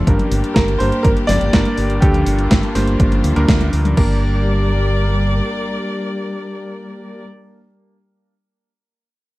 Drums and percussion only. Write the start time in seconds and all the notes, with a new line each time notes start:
0.07 kick, closed hi-hat
0.19 closed hi-hat, high tom
0.32 open hi-hat
0.44 closed hi-hat
0.56 kick, snare, closed hi-hat
0.68 closed hi-hat
0.80 open hi-hat
0.92 closed hi-hat
1.05 kick, closed hi-hat
1.17 closed hi-hat
1.29 snare, open hi-hat, high tom
1.41 closed hi-hat
1.53 kick, snare, closed hi-hat
1.65 closed hi-hat
1.78 open hi-hat
1.90 closed hi-hat
2.02 kick, closed hi-hat
2.14 closed hi-hat, high tom
2.26 open hi-hat
2.39 closed hi-hat
2.51 kick, snare, closed hi-hat
2.63 closed hi-hat
2.75 snare, open hi-hat
2.88 closed hi-hat
3.00 kick, closed hi-hat
3.12 closed hi-hat, high tom
3.24 open hi-hat
3.36 closed hi-hat
3.49 kick, snare, closed hi-hat
3.61 closed hi-hat, high tom
3.73 open hi-hat
3.85 closed hi-hat, high tom
3.97 kick, crash